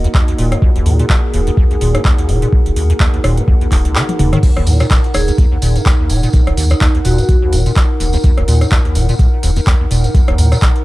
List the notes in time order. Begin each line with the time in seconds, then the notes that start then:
Already playing: A#3 D#4 F#4 A#4 D#5 F#5
0.04 D#2, closed hi-hat
0.15 D#2, kick, clap
0.28 D#2, closed hi-hat
0.38 D#1 A#2, open hi-hat
0.52 F#2, cross-stick, closed hi-hat
0.62 D#2 G#4, kick
0.76 D#1 D#2, closed hi-hat
0.86 D#2 A#2, open hi-hat
0.99 A#2, closed hi-hat
1.10 D#1, kick, clap
1.34 D#1 D#2, open hi-hat
1.47 D#2, closed hi-hat
1.57 D#2, kick
1.71 D#2, closed hi-hat
1.81 D#1 A#2, open hi-hat
1.95 F#2, cross-stick, closed hi-hat
2.05 D#2, kick, clap
2.18 D#2, closed hi-hat
2.29 D#1 A#2, open hi-hat
2.42 A#2, closed hi-hat
2.53 D#1, kick
2.66 D#1, closed hi-hat
2.76 D#2, open hi-hat
2.90 D#2, closed hi-hat
3.00 D#2, kick, clap
3.14 D#2, closed hi-hat
3.24 D#1 A#2, cross-stick, open hi-hat
3.37 F#2, closed hi-hat
3.48 D#2, kick
3.61 D#2, closed hi-hat
3.72 D#1 D#2, kick, clap, open hi-hat
3.85 C#2, closed hi-hat
3.95 D#3, clap
4.09 closed hi-hat, high tom
4.19 D#1 D#2, open hi-hat, mid tom
4.33 D#3, cross-stick, closed hi-hat, mid tom
4.43 D#2, kick, closed hi-hat, tambourine, crash
4.56 D#1 D#2, cross-stick, closed hi-hat
4.67 D#2 A#2, open hi-hat, tambourine
4.80 A#2, cross-stick, closed hi-hat, tambourine
4.91 D#1, kick, clap, closed hi-hat, tambourine
5.04 closed hi-hat
5.14 D#1 D#2 G#4, cross-stick, open hi-hat, tambourine
5.28 D#2, closed hi-hat, tambourine
5.38 D#2, kick, closed hi-hat, tambourine
5.52 D#2
5.62 D#1 A#2, open hi-hat, tambourine
5.76 F#2, closed hi-hat, tambourine
5.86 D#2, kick, clap, closed hi-hat, tambourine
5.99 D#2
6.10 D#1 A#2, open hi-hat, tambourine
6.23 A#2, closed hi-hat, tambourine
6.33 D#1, kick, closed hi-hat, tambourine
6.47 D#1, cross-stick, closed hi-hat
6.57 D#2, open hi-hat, tambourine
6.70 D#2 D#4, cross-stick, closed hi-hat, tambourine
6.81 D#2 D#4, kick, clap, closed hi-hat, tambourine
6.95 D#2, closed hi-hat
7.05 D#1 A#2 F#4, open hi-hat, tambourine
7.18 F#2, closed hi-hat, tambourine
7.28 D#2, kick, closed hi-hat, tambourine
7.42 D#2
7.53 D#1 A#2, open hi-hat, tambourine
7.66 A#2, closed hi-hat, tambourine
7.76 D#1, kick, clap, closed hi-hat
8.00 D#1 D#2, open hi-hat, tambourine
8.13 D#2, closed hi-hat, tambourine
8.23 D#2, kick, closed hi-hat, tambourine
8.37 D#1 D#2, cross-stick, closed hi-hat
8.48 D#2 A#2, open hi-hat, tambourine
8.61 F#2, cross-stick, closed hi-hat, tambourine
8.71 D#2, kick, clap, closed hi-hat, tambourine
8.85 D#2, closed hi-hat
8.95 D#1 A#2, open hi-hat, tambourine
9.09 A#2, closed hi-hat, tambourine
9.19 D#1, kick, closed hi-hat, tambourine
9.43 D#1 D#2, open hi-hat, tambourine
9.56 D#2, closed hi-hat, tambourine
9.67 D#2, kick, clap, closed hi-hat, tambourine
9.80 D#2
9.91 D#1 A#2, open hi-hat, tambourine
10.04 F#2, closed hi-hat, tambourine
10.15 D#2, kick, closed hi-hat, tambourine
10.28 D#1 D#2, cross-stick, closed hi-hat
10.38 D#2 A#2, open hi-hat, tambourine
10.52 A#2, cross-stick, closed hi-hat, tambourine
10.62 D#1, kick, clap, closed hi-hat, tambourine
10.76 closed hi-hat